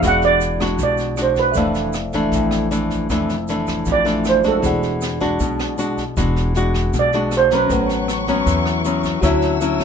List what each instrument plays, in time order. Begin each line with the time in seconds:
0.00 upright bass E1, nylon-string guitar E3 G#3, tine electric piano E4 G#4 D5, kick, cross-stick, snare, shaker
0.05 nylon-string guitar D4 F#4, tine electric piano F#5, steel pan F#5
0.22 steel pan D5, snare, shaker
0.41 snare, shaker
0.60 nylon-string guitar G#3 D4 F#4, kick, cross-stick, snare, shaker
0.78 upright bass B1, nylon-string guitar B2, kick, snare, shaker
0.83 steel pan D5
0.97 snare, shaker
1.17 nylon-string guitar G#3 D4 F#4, cross-stick, snare, shaker
1.22 steel pan C5
1.36 steel pan B4, kick, snare, shaker
1.52 upright bass F1, tine electric piano A4 E5, kick, snare, shaker
1.56 nylon-string guitar F2 E3 A3 D4, tine electric piano D5 F5
1.74 snare, shaker
1.93 cross-stick, snare, shaker
2.13 nylon-string guitar E3 A3 D4, kick, snare, shaker
2.32 upright bass A1, nylon-string guitar F2, kick, snare, shaker
2.51 cross-stick, snare, shaker
2.71 nylon-string guitar E3 A3 D4, snare, shaker
2.90 kick, snare, shaker
3.10 upright bass F1, nylon-string guitar F2 E3 A3 D4, kick, cross-stick, snare, shaker
3.29 snare, shaker
3.48 nylon-string guitar E3 A3 D4, snare, shaker
3.67 kick, cross-stick, snare, shaker
3.85 upright bass A1, nylon-string guitar F2, kick, snare, shaker
3.92 steel pan D5
4.05 nylon-string guitar E3 A3 D4, snare, shaker
4.24 cross-stick, snare, shaker
4.29 steel pan C5
4.43 nylon-string guitar G#3 D4 F#4, kick, snare, shaker
4.48 steel pan A4
4.60 upright bass E1, nylon-string guitar E3, tine electric piano E4 G#4, kick, snare, shaker
4.65 tine electric piano D5 F#5
4.83 snare, shaker
5.01 cross-stick, snare, shaker
5.20 nylon-string guitar G#3 D4 F#4, kick, snare, shaker
5.40 upright bass B1, nylon-string guitar B2, kick, snare, shaker
5.59 cross-stick, snare, shaker
5.78 nylon-string guitar G#3 D4 F#4, snare, shaker
5.98 kick, snare, shaker
6.17 upright bass E1, nylon-string guitar E3 G#3 D4 F#4, kick, cross-stick, snare, shaker
6.36 snare, shaker
6.54 nylon-string guitar G#3 D4 F#4, snare, shaker
6.74 kick, cross-stick, snare, shaker
6.93 upright bass B1, nylon-string guitar B2, kick, snare, shaker
6.99 steel pan D5
7.13 nylon-string guitar G#3 D4 F#4, snare, shaker
7.31 cross-stick, snare, shaker
7.37 steel pan C5
7.51 nylon-string guitar F#3 B3 C#4, kick, snare, shaker
7.55 steel pan B4
7.67 upright bass A1, tine electric piano C#4 A4, string section C#6, kick, snare, shaker
7.71 nylon-string guitar A2, tine electric piano B4 F#5, string section B4 F#5
7.89 snare, shaker
8.08 cross-stick, snare, shaker
8.27 nylon-string guitar F#3 B3 C#4, kick, snare, shaker
8.46 upright bass E2, nylon-string guitar E3, kick, snare, shaker
8.65 cross-stick, snare, shaker
8.85 nylon-string guitar F#3 B3 C#4, snare, shaker
9.03 kick, snare, shaker
9.21 upright bass D2, nylon-string guitar D3 F#3 C#4 E4, tine electric piano F#4 C#5, string section C#5 F#5 E6, kick, cross-stick, snare, shaker
9.25 tine electric piano E5
9.42 snare, shaker
9.61 nylon-string guitar F#3 C#4 E4, snare, shaker
9.80 kick, cross-stick, snare, shaker